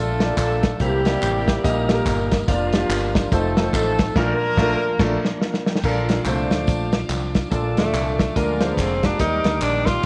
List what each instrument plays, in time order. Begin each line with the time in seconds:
Already playing: fingered electric bass A#1, tonewheel organ F3 D4 A4, horn section A3 D4 F4 A4
0.20 grand piano A#3 F4 A4 D5, snare, closed hi-hat, tambourine
0.37 fingered electric bass A#1, horn section A3 D4 F4 A4, kick, clap, closed hi-hat, tambourine
0.63 kick, snare, closed hi-hat, tambourine
0.79 fingered electric bass C2, grand piano C3 A#3 E4 G4 C5, tonewheel organ G3 C4 E4 A#4, horn section G3 A#3 E4 G4, kick, closed hi-hat, tambourine
1.05 grand piano A#3 E4 G4 D5, snare, closed hi-hat, tambourine
1.22 fingered electric bass A1, clap, closed hi-hat, tambourine
1.48 kick, snare, closed hi-hat, tambourine
1.64 fingered electric bass A#1, grand piano A#2 A#3 D#4 G4 D#5, tonewheel organ G3 A#3 A#4 D#5, kick, closed hi-hat, tambourine
1.88 grand piano A#3 D#4 G4 A4, snare, closed hi-hat, tambourine
1.94 grand piano A#4
2.06 fingered electric bass G1, kick, clap, closed hi-hat, tambourine
2.31 kick, snare, closed hi-hat, tambourine
2.47 fingered electric bass F1, horn section F3 A#3 D4 F4, tonewheel organ F3 A#3 C4 A#4, grand piano A#3 D4 F4 D5, kick, closed hi-hat, tambourine
2.54 tonewheel organ D4
2.72 grand piano A#3 D4 F4 G4, snare, closed hi-hat, tambourine
2.89 fingered electric bass G1, clap, closed hi-hat, tambourine
3.15 kick, snare, closed hi-hat, tambourine
3.31 fingered electric bass F1, tonewheel organ F3 C4 D#4 A4, horn section A3 C4 D#4 A4, grand piano A3 D#4 F4 C5, kick, closed hi-hat, tambourine
3.57 grand piano A3 D#4 F4 A#4, snare, closed hi-hat, tambourine
3.63 grand piano C5
3.73 fingered electric bass A1, horn section A3 C4 D#4 A4, kick, clap, closed hi-hat, tambourine
3.99 kick, snare, closed hi-hat, tambourine
4.15 fingered electric bass A#1, grand piano A#2 A3 D4 F4 A#4, tonewheel organ F3 A#3 D4 A#4, horn section A#3 D4 F4 A#4, kick, snare, crash
4.57 fingered electric bass A#1, grand piano A3 D4 F4 A4, kick, snare
4.63 grand piano A#4
4.99 fingered electric bass A#1, grand piano A3 D4 F4 A4, kick, snare, crash
5.25 tonewheel organ C5 D5, snare
5.41 tonewheel organ F5, snare
5.54 snare
5.66 tonewheel organ G5, snare
5.76 snare
5.83 fingered electric bass A#1, grand piano A#2 D4 F4 A4 A#4, tonewheel organ F3 C4 F4, string section F5 A5 D6, kick, crash, tambourine
5.90 tonewheel organ D4
6.09 snare, closed hi-hat, tambourine
6.25 fingered electric bass C2, grand piano A3 C4 F4 C5, clap, closed hi-hat, tambourine
6.32 grand piano D4
6.51 fingered electric bass D2, snare, closed hi-hat, tambourine
6.67 fingered electric bass A#1, kick, closed hi-hat, tambourine
6.92 snare, closed hi-hat, tambourine
7.09 fingered electric bass C2, clap, closed hi-hat, tambourine
7.35 kick, snare, closed hi-hat, tambourine
7.50 fingered electric bass A#1, grand piano A#2 D4 F4 A4 D5, tonewheel organ F3 A3 D4 A4, string section F5 A5 D6, kick, closed hi-hat, tambourine
7.77 fingered electric bass D2, tenor saxophone A3, snare, closed hi-hat, tambourine
7.93 fingered electric bass C2, clap, closed hi-hat, tambourine
8.19 kick, snare, closed hi-hat, tambourine
8.35 fingered electric bass D2, grand piano D3 G#3 D4 F4 A#4, tonewheel organ F3 A#3 D4 G#4, tenor saxophone A#3, string section G#5 A#5 D6, kick, closed hi-hat, tambourine
8.60 grand piano G#3 D4 F4 C5, snare, closed hi-hat, tambourine
8.73 fingered electric bass F1, tenor saxophone B3, kick
8.78 tenor saxophone C4, clap, closed hi-hat, tambourine
9.03 grand piano G#3 D4 F4 G4, tenor saxophone D4, kick, snare, closed hi-hat, tambourine
9.19 fingered electric bass D#2, grand piano D#3 G3 D#4 A#4 D5, tonewheel organ D#3 A#3 F#4 D5, string section D#4 G5, tenor saxophone D#4, kick, closed hi-hat, tambourine
9.25 tonewheel organ G4
9.44 fingered electric bass D2, snare, closed hi-hat, tambourine
9.61 fingered electric bass A#1, tenor saxophone D4, clap, closed hi-hat, tambourine
9.86 tenor saxophone F4, kick, snare, closed hi-hat, tambourine